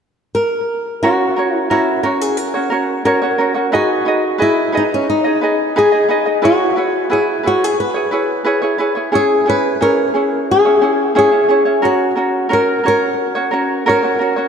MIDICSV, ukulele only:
0, 0, Header, 1, 2, 480
1, 0, Start_track
1, 0, Tempo, 675676
1, 720, Time_signature, 4, 2, 24, 8
1, 10287, End_track
2, 0, Start_track
2, 0, Title_t, "Ukulele"
2, 0, Program_c, 0, 24
2, 733, Note_on_c, 0, 70, 65
2, 735, Note_on_c, 0, 61, 67
2, 739, Note_on_c, 0, 66, 70
2, 742, Note_on_c, 0, 73, 73
2, 960, Note_off_c, 0, 70, 0
2, 968, Note_off_c, 0, 61, 0
2, 968, Note_on_c, 0, 70, 48
2, 970, Note_off_c, 0, 66, 0
2, 972, Note_off_c, 0, 73, 0
2, 979, Note_on_c, 0, 61, 46
2, 980, Note_on_c, 0, 66, 45
2, 986, Note_on_c, 0, 73, 52
2, 1200, Note_off_c, 0, 70, 0
2, 1206, Note_off_c, 0, 61, 0
2, 1207, Note_off_c, 0, 66, 0
2, 1208, Note_on_c, 0, 70, 63
2, 1210, Note_off_c, 0, 73, 0
2, 1214, Note_on_c, 0, 61, 60
2, 1216, Note_on_c, 0, 66, 72
2, 1219, Note_on_c, 0, 73, 66
2, 1435, Note_off_c, 0, 70, 0
2, 1443, Note_off_c, 0, 61, 0
2, 1444, Note_on_c, 0, 70, 49
2, 1446, Note_off_c, 0, 66, 0
2, 1450, Note_off_c, 0, 73, 0
2, 1452, Note_on_c, 0, 61, 50
2, 1455, Note_on_c, 0, 66, 52
2, 1460, Note_on_c, 0, 73, 49
2, 1796, Note_off_c, 0, 73, 0
2, 1802, Note_off_c, 0, 70, 0
2, 1804, Note_on_c, 0, 73, 44
2, 1805, Note_off_c, 0, 66, 0
2, 1807, Note_off_c, 0, 61, 0
2, 1813, Note_on_c, 0, 66, 41
2, 1824, Note_on_c, 0, 61, 40
2, 1917, Note_on_c, 0, 70, 51
2, 1919, Note_off_c, 0, 61, 0
2, 1921, Note_off_c, 0, 66, 0
2, 1923, Note_off_c, 0, 73, 0
2, 1928, Note_on_c, 0, 61, 54
2, 1930, Note_on_c, 0, 66, 52
2, 1933, Note_on_c, 0, 73, 52
2, 2158, Note_off_c, 0, 61, 0
2, 2159, Note_off_c, 0, 70, 0
2, 2166, Note_off_c, 0, 66, 0
2, 2167, Note_off_c, 0, 73, 0
2, 2167, Note_on_c, 0, 61, 70
2, 2168, Note_on_c, 0, 70, 64
2, 2173, Note_on_c, 0, 66, 63
2, 2178, Note_on_c, 0, 73, 68
2, 2277, Note_off_c, 0, 73, 0
2, 2284, Note_off_c, 0, 61, 0
2, 2285, Note_off_c, 0, 70, 0
2, 2285, Note_on_c, 0, 73, 49
2, 2287, Note_off_c, 0, 66, 0
2, 2296, Note_on_c, 0, 66, 40
2, 2303, Note_on_c, 0, 61, 38
2, 2399, Note_off_c, 0, 61, 0
2, 2403, Note_off_c, 0, 73, 0
2, 2403, Note_on_c, 0, 70, 52
2, 2405, Note_off_c, 0, 66, 0
2, 2407, Note_on_c, 0, 61, 49
2, 2414, Note_on_c, 0, 66, 54
2, 2418, Note_on_c, 0, 73, 55
2, 2509, Note_off_c, 0, 73, 0
2, 2517, Note_off_c, 0, 66, 0
2, 2517, Note_on_c, 0, 73, 40
2, 2522, Note_off_c, 0, 70, 0
2, 2524, Note_off_c, 0, 61, 0
2, 2526, Note_on_c, 0, 66, 38
2, 2537, Note_on_c, 0, 61, 36
2, 2640, Note_off_c, 0, 73, 0
2, 2642, Note_on_c, 0, 71, 67
2, 2644, Note_off_c, 0, 66, 0
2, 2645, Note_off_c, 0, 61, 0
2, 2647, Note_on_c, 0, 63, 69
2, 2651, Note_on_c, 0, 68, 73
2, 2652, Note_on_c, 0, 75, 75
2, 2869, Note_off_c, 0, 71, 0
2, 2876, Note_off_c, 0, 63, 0
2, 2878, Note_on_c, 0, 71, 45
2, 2884, Note_off_c, 0, 68, 0
2, 2885, Note_on_c, 0, 63, 56
2, 2887, Note_off_c, 0, 75, 0
2, 2893, Note_on_c, 0, 68, 45
2, 2897, Note_on_c, 0, 75, 55
2, 3106, Note_off_c, 0, 71, 0
2, 3112, Note_off_c, 0, 68, 0
2, 3114, Note_on_c, 0, 71, 64
2, 3116, Note_off_c, 0, 75, 0
2, 3121, Note_on_c, 0, 68, 70
2, 3123, Note_off_c, 0, 63, 0
2, 3125, Note_on_c, 0, 75, 70
2, 3347, Note_off_c, 0, 71, 0
2, 3356, Note_on_c, 0, 71, 52
2, 3359, Note_off_c, 0, 68, 0
2, 3360, Note_on_c, 0, 63, 52
2, 3363, Note_off_c, 0, 75, 0
2, 3367, Note_on_c, 0, 68, 53
2, 3372, Note_on_c, 0, 75, 54
2, 3716, Note_off_c, 0, 75, 0
2, 3719, Note_off_c, 0, 71, 0
2, 3721, Note_off_c, 0, 63, 0
2, 3725, Note_off_c, 0, 68, 0
2, 3725, Note_on_c, 0, 75, 46
2, 3737, Note_on_c, 0, 68, 43
2, 3740, Note_on_c, 0, 63, 36
2, 3844, Note_off_c, 0, 63, 0
2, 3844, Note_off_c, 0, 75, 0
2, 3845, Note_on_c, 0, 71, 54
2, 3849, Note_off_c, 0, 68, 0
2, 3853, Note_on_c, 0, 63, 51
2, 3857, Note_on_c, 0, 68, 54
2, 3862, Note_on_c, 0, 75, 55
2, 4083, Note_off_c, 0, 63, 0
2, 4084, Note_off_c, 0, 71, 0
2, 4089, Note_off_c, 0, 68, 0
2, 4092, Note_off_c, 0, 75, 0
2, 4092, Note_on_c, 0, 63, 71
2, 4092, Note_on_c, 0, 71, 73
2, 4097, Note_on_c, 0, 68, 81
2, 4101, Note_on_c, 0, 75, 71
2, 4196, Note_off_c, 0, 75, 0
2, 4205, Note_on_c, 0, 75, 44
2, 4207, Note_off_c, 0, 63, 0
2, 4207, Note_off_c, 0, 71, 0
2, 4208, Note_off_c, 0, 68, 0
2, 4217, Note_on_c, 0, 68, 42
2, 4223, Note_on_c, 0, 63, 37
2, 4318, Note_off_c, 0, 63, 0
2, 4323, Note_off_c, 0, 75, 0
2, 4323, Note_on_c, 0, 71, 52
2, 4324, Note_off_c, 0, 68, 0
2, 4326, Note_on_c, 0, 63, 54
2, 4333, Note_on_c, 0, 68, 57
2, 4338, Note_on_c, 0, 75, 57
2, 4437, Note_off_c, 0, 75, 0
2, 4443, Note_off_c, 0, 71, 0
2, 4444, Note_off_c, 0, 63, 0
2, 4446, Note_off_c, 0, 68, 0
2, 4446, Note_on_c, 0, 75, 47
2, 4454, Note_on_c, 0, 68, 36
2, 4457, Note_on_c, 0, 63, 32
2, 4559, Note_off_c, 0, 63, 0
2, 4560, Note_on_c, 0, 71, 62
2, 4561, Note_off_c, 0, 68, 0
2, 4562, Note_on_c, 0, 64, 67
2, 4564, Note_off_c, 0, 75, 0
2, 4570, Note_on_c, 0, 68, 70
2, 4574, Note_on_c, 0, 73, 73
2, 4794, Note_off_c, 0, 71, 0
2, 4802, Note_off_c, 0, 64, 0
2, 4802, Note_off_c, 0, 68, 0
2, 4802, Note_on_c, 0, 71, 53
2, 4808, Note_off_c, 0, 73, 0
2, 4810, Note_on_c, 0, 64, 49
2, 4810, Note_on_c, 0, 68, 51
2, 4817, Note_on_c, 0, 73, 54
2, 5033, Note_off_c, 0, 71, 0
2, 5036, Note_off_c, 0, 64, 0
2, 5041, Note_on_c, 0, 71, 62
2, 5044, Note_off_c, 0, 68, 0
2, 5045, Note_on_c, 0, 64, 67
2, 5048, Note_off_c, 0, 73, 0
2, 5053, Note_on_c, 0, 68, 72
2, 5056, Note_on_c, 0, 73, 67
2, 5272, Note_off_c, 0, 71, 0
2, 5279, Note_off_c, 0, 64, 0
2, 5280, Note_on_c, 0, 71, 47
2, 5286, Note_off_c, 0, 68, 0
2, 5288, Note_on_c, 0, 64, 48
2, 5289, Note_off_c, 0, 73, 0
2, 5294, Note_on_c, 0, 68, 54
2, 5301, Note_on_c, 0, 73, 52
2, 5634, Note_off_c, 0, 73, 0
2, 5642, Note_off_c, 0, 71, 0
2, 5642, Note_on_c, 0, 73, 50
2, 5645, Note_off_c, 0, 64, 0
2, 5645, Note_off_c, 0, 68, 0
2, 5653, Note_on_c, 0, 68, 37
2, 5661, Note_on_c, 0, 64, 38
2, 5760, Note_off_c, 0, 64, 0
2, 5762, Note_on_c, 0, 71, 55
2, 5763, Note_off_c, 0, 73, 0
2, 5765, Note_off_c, 0, 68, 0
2, 5769, Note_on_c, 0, 64, 57
2, 5773, Note_on_c, 0, 68, 54
2, 5775, Note_on_c, 0, 73, 57
2, 5991, Note_off_c, 0, 71, 0
2, 5997, Note_off_c, 0, 64, 0
2, 5999, Note_on_c, 0, 71, 64
2, 6002, Note_off_c, 0, 68, 0
2, 6004, Note_off_c, 0, 73, 0
2, 6005, Note_on_c, 0, 64, 69
2, 6011, Note_on_c, 0, 68, 66
2, 6012, Note_on_c, 0, 73, 67
2, 6113, Note_off_c, 0, 73, 0
2, 6121, Note_off_c, 0, 71, 0
2, 6121, Note_on_c, 0, 73, 51
2, 6122, Note_off_c, 0, 68, 0
2, 6124, Note_off_c, 0, 64, 0
2, 6130, Note_on_c, 0, 68, 46
2, 6138, Note_on_c, 0, 64, 44
2, 6238, Note_off_c, 0, 64, 0
2, 6239, Note_on_c, 0, 71, 53
2, 6242, Note_off_c, 0, 73, 0
2, 6243, Note_off_c, 0, 68, 0
2, 6247, Note_on_c, 0, 64, 60
2, 6252, Note_on_c, 0, 68, 55
2, 6253, Note_on_c, 0, 73, 62
2, 6350, Note_off_c, 0, 73, 0
2, 6358, Note_on_c, 0, 73, 43
2, 6359, Note_off_c, 0, 68, 0
2, 6361, Note_off_c, 0, 71, 0
2, 6365, Note_off_c, 0, 64, 0
2, 6367, Note_on_c, 0, 68, 38
2, 6373, Note_on_c, 0, 64, 37
2, 6469, Note_off_c, 0, 68, 0
2, 6475, Note_off_c, 0, 64, 0
2, 6478, Note_on_c, 0, 68, 61
2, 6481, Note_off_c, 0, 73, 0
2, 6483, Note_on_c, 0, 61, 67
2, 6484, Note_on_c, 0, 64, 75
2, 6492, Note_on_c, 0, 73, 75
2, 6710, Note_off_c, 0, 68, 0
2, 6719, Note_off_c, 0, 61, 0
2, 6719, Note_on_c, 0, 68, 52
2, 6721, Note_off_c, 0, 64, 0
2, 6728, Note_off_c, 0, 73, 0
2, 6728, Note_on_c, 0, 61, 51
2, 6729, Note_on_c, 0, 64, 53
2, 6735, Note_on_c, 0, 73, 53
2, 6958, Note_off_c, 0, 68, 0
2, 6962, Note_off_c, 0, 61, 0
2, 6964, Note_off_c, 0, 64, 0
2, 6967, Note_on_c, 0, 68, 67
2, 6969, Note_off_c, 0, 73, 0
2, 6971, Note_on_c, 0, 61, 61
2, 6973, Note_on_c, 0, 64, 62
2, 6977, Note_on_c, 0, 73, 68
2, 7194, Note_off_c, 0, 68, 0
2, 7201, Note_off_c, 0, 61, 0
2, 7203, Note_on_c, 0, 68, 44
2, 7206, Note_off_c, 0, 64, 0
2, 7209, Note_on_c, 0, 61, 48
2, 7210, Note_off_c, 0, 73, 0
2, 7214, Note_on_c, 0, 64, 47
2, 7218, Note_on_c, 0, 73, 51
2, 7557, Note_off_c, 0, 73, 0
2, 7562, Note_off_c, 0, 64, 0
2, 7563, Note_off_c, 0, 68, 0
2, 7566, Note_off_c, 0, 61, 0
2, 7566, Note_on_c, 0, 73, 47
2, 7571, Note_on_c, 0, 64, 38
2, 7579, Note_on_c, 0, 61, 40
2, 7675, Note_off_c, 0, 61, 0
2, 7682, Note_on_c, 0, 68, 52
2, 7684, Note_off_c, 0, 64, 0
2, 7684, Note_off_c, 0, 73, 0
2, 7684, Note_on_c, 0, 61, 51
2, 7692, Note_on_c, 0, 64, 56
2, 7696, Note_on_c, 0, 73, 51
2, 7913, Note_off_c, 0, 68, 0
2, 7919, Note_off_c, 0, 61, 0
2, 7920, Note_off_c, 0, 64, 0
2, 7921, Note_on_c, 0, 68, 62
2, 7924, Note_off_c, 0, 73, 0
2, 7927, Note_on_c, 0, 61, 64
2, 7928, Note_on_c, 0, 64, 71
2, 7932, Note_on_c, 0, 73, 72
2, 8030, Note_off_c, 0, 73, 0
2, 8034, Note_off_c, 0, 64, 0
2, 8038, Note_on_c, 0, 73, 43
2, 8042, Note_off_c, 0, 68, 0
2, 8043, Note_on_c, 0, 64, 41
2, 8045, Note_off_c, 0, 61, 0
2, 8053, Note_on_c, 0, 61, 38
2, 8155, Note_off_c, 0, 61, 0
2, 8159, Note_on_c, 0, 68, 48
2, 8161, Note_off_c, 0, 73, 0
2, 8163, Note_off_c, 0, 64, 0
2, 8164, Note_on_c, 0, 61, 51
2, 8171, Note_on_c, 0, 64, 53
2, 8173, Note_on_c, 0, 73, 60
2, 8269, Note_off_c, 0, 73, 0
2, 8276, Note_off_c, 0, 64, 0
2, 8278, Note_on_c, 0, 73, 41
2, 8281, Note_off_c, 0, 68, 0
2, 8283, Note_off_c, 0, 61, 0
2, 8285, Note_on_c, 0, 64, 38
2, 8291, Note_on_c, 0, 61, 32
2, 8392, Note_off_c, 0, 61, 0
2, 8397, Note_on_c, 0, 70, 68
2, 8400, Note_off_c, 0, 73, 0
2, 8401, Note_off_c, 0, 64, 0
2, 8401, Note_on_c, 0, 61, 68
2, 8404, Note_on_c, 0, 66, 68
2, 8409, Note_on_c, 0, 73, 70
2, 8627, Note_off_c, 0, 70, 0
2, 8634, Note_off_c, 0, 61, 0
2, 8635, Note_on_c, 0, 70, 47
2, 8639, Note_off_c, 0, 66, 0
2, 8642, Note_on_c, 0, 61, 49
2, 8646, Note_off_c, 0, 73, 0
2, 8648, Note_on_c, 0, 66, 54
2, 8653, Note_on_c, 0, 73, 54
2, 8866, Note_off_c, 0, 70, 0
2, 8871, Note_off_c, 0, 61, 0
2, 8874, Note_on_c, 0, 70, 57
2, 8875, Note_off_c, 0, 66, 0
2, 8878, Note_off_c, 0, 73, 0
2, 8879, Note_on_c, 0, 61, 63
2, 8883, Note_on_c, 0, 66, 72
2, 8887, Note_on_c, 0, 73, 68
2, 9110, Note_off_c, 0, 70, 0
2, 9117, Note_off_c, 0, 61, 0
2, 9118, Note_on_c, 0, 70, 48
2, 9121, Note_off_c, 0, 66, 0
2, 9125, Note_off_c, 0, 73, 0
2, 9126, Note_on_c, 0, 61, 53
2, 9130, Note_on_c, 0, 66, 49
2, 9134, Note_on_c, 0, 73, 59
2, 9476, Note_off_c, 0, 73, 0
2, 9481, Note_off_c, 0, 70, 0
2, 9484, Note_off_c, 0, 61, 0
2, 9484, Note_on_c, 0, 73, 49
2, 9486, Note_off_c, 0, 66, 0
2, 9494, Note_on_c, 0, 66, 47
2, 9500, Note_on_c, 0, 61, 34
2, 9597, Note_on_c, 0, 70, 53
2, 9600, Note_off_c, 0, 61, 0
2, 9603, Note_off_c, 0, 73, 0
2, 9604, Note_off_c, 0, 66, 0
2, 9608, Note_on_c, 0, 61, 53
2, 9613, Note_on_c, 0, 66, 55
2, 9615, Note_on_c, 0, 73, 54
2, 9838, Note_off_c, 0, 70, 0
2, 9844, Note_off_c, 0, 66, 0
2, 9845, Note_off_c, 0, 61, 0
2, 9846, Note_on_c, 0, 70, 69
2, 9849, Note_off_c, 0, 73, 0
2, 9852, Note_on_c, 0, 66, 74
2, 9853, Note_on_c, 0, 61, 75
2, 9858, Note_on_c, 0, 73, 83
2, 9958, Note_off_c, 0, 73, 0
2, 9964, Note_off_c, 0, 70, 0
2, 9966, Note_on_c, 0, 73, 45
2, 9967, Note_off_c, 0, 66, 0
2, 9968, Note_off_c, 0, 61, 0
2, 9975, Note_on_c, 0, 66, 41
2, 9982, Note_on_c, 0, 61, 39
2, 10080, Note_on_c, 0, 70, 49
2, 10082, Note_off_c, 0, 61, 0
2, 10084, Note_off_c, 0, 73, 0
2, 10089, Note_off_c, 0, 66, 0
2, 10090, Note_on_c, 0, 61, 49
2, 10096, Note_on_c, 0, 66, 55
2, 10098, Note_on_c, 0, 73, 60
2, 10195, Note_off_c, 0, 73, 0
2, 10201, Note_off_c, 0, 70, 0
2, 10203, Note_on_c, 0, 73, 42
2, 10206, Note_off_c, 0, 66, 0
2, 10207, Note_off_c, 0, 61, 0
2, 10214, Note_on_c, 0, 66, 43
2, 10217, Note_on_c, 0, 61, 36
2, 10287, Note_off_c, 0, 61, 0
2, 10287, Note_off_c, 0, 66, 0
2, 10287, Note_off_c, 0, 73, 0
2, 10287, End_track
0, 0, End_of_file